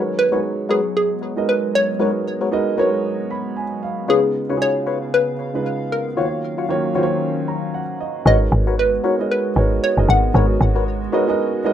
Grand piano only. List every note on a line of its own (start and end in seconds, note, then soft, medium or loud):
0.00 0.23 G#3 medium
0.00 0.23 D#4 medium
0.00 0.23 F#4 medium
0.00 0.23 A#4 medium
0.00 0.24 B4 medium
0.00 0.24 C#5 medium
0.32 1.15 G#3 medium
0.32 1.15 D#4 medium
0.32 1.15 F#4 medium
0.32 1.15 G#4 medium
0.32 1.15 B4 medium
0.32 1.16 C#5 medium
1.36 1.88 G#3 medium
1.36 1.89 D#4 medium
1.36 1.89 F#4 medium
1.36 1.89 A#4 medium
1.36 1.89 B4 medium
1.36 1.89 D#5 medium
1.99 2.43 G#3 medium
1.99 2.43 D#4 medium
1.99 2.43 F#4 medium
1.99 2.43 A#4 medium
1.99 2.44 B4 medium
1.99 2.44 C#5 medium
2.51 2.73 G#3 medium
2.51 2.74 D#4 medium
2.51 2.74 F#4 medium
2.51 2.74 A#4 medium
2.51 2.74 B4 medium
2.51 2.74 D#5 loud
2.78 3.62 G#3 medium
2.78 3.62 D#4 medium
2.78 3.62 F#4 medium
2.78 3.63 A#4 medium
2.78 3.63 B4 medium
2.78 3.63 C#5 loud
3.31 3.55 B5 medium
3.57 3.81 G#5 medium
3.83 4.07 F5 medium
4.08 4.40 C#3 medium
4.08 4.40 G#3 medium
4.08 4.41 D#4 medium
4.08 4.41 F4 medium
4.08 4.41 B4 medium
4.49 5.32 C#3 medium
4.49 5.32 G#3 medium
4.49 5.32 D#4 medium
4.49 5.33 F4 medium
4.49 4.56 F#4 medium
4.57 5.36 G#4 medium
5.53 6.06 C#3 medium
5.53 6.06 G#3 medium
5.53 6.06 D#4 medium
5.53 6.07 F4 medium
5.53 6.07 B4 medium
6.17 6.60 D#3 medium
6.17 6.61 A#3 medium
6.17 6.61 F4 medium
6.17 6.61 F#4 medium
6.17 6.25 C5 medium
6.25 6.64 C#5 medium
6.69 6.91 D#3 medium
6.69 6.91 A#3 medium
6.69 6.91 F4 medium
6.69 6.91 F#4 medium
6.69 6.92 C#5 loud
6.95 7.79 D#3 medium
6.95 7.80 A#3 medium
6.95 7.80 F4 medium
6.95 7.80 F#4 medium
6.95 7.03 C5 medium
7.03 7.83 C#5 loud
7.48 7.72 A#5 medium
7.74 7.98 F#5 medium
8.00 8.24 D#5 medium
8.26 8.90 G#3 medium
8.26 8.90 D#4 medium
8.26 8.90 F#4 medium
8.26 8.91 A#4 medium
8.26 8.91 B4 medium
8.26 8.91 C#5 medium
9.04 9.16 G#3 medium
9.04 9.16 D#4 medium
9.04 9.16 F#4 medium
9.04 9.17 A#4 medium
9.04 9.17 B4 medium
9.04 9.17 C#5 medium
9.19 9.50 G#3 medium
9.19 9.50 D#4 medium
9.19 9.50 F#4 medium
9.19 9.50 A#4 medium
9.19 9.50 B4 medium
9.19 9.50 D#5 medium
9.56 9.88 G#3 medium
9.56 9.88 D#4 medium
9.56 9.89 F#4 medium
9.56 9.89 A#4 medium
9.56 9.89 B4 medium
9.56 9.89 C#5 medium
9.97 10.28 G#3 medium
9.97 10.28 D#4 medium
9.97 10.28 F#4 medium
9.97 10.28 A#4 medium
9.97 10.29 B4 medium
9.97 10.29 D#5 medium
10.34 10.99 G#3 medium
10.34 10.99 D#4 medium
10.34 10.99 F#4 medium
10.34 10.99 A#4 medium
10.34 10.99 B4 medium
10.34 10.99 C#5 medium
11.12 11.25 G#3 medium
11.12 11.25 D#4 medium
11.12 11.25 F#4 medium
11.12 11.25 A#4 medium
11.12 11.25 B4 medium
11.12 11.26 D#5 loud
11.28 11.58 G#3 medium
11.28 11.58 D#4 medium
11.28 11.59 F#4 medium
11.28 11.59 A#4 medium
11.28 11.59 B4 medium
11.28 11.59 D#5 loud
11.64 11.73 G#3 medium
11.64 11.73 D#4 medium
11.64 11.73 F#4 medium
11.64 11.73 A#4 medium
11.64 11.73 B4 medium
11.64 11.73 D#5 loud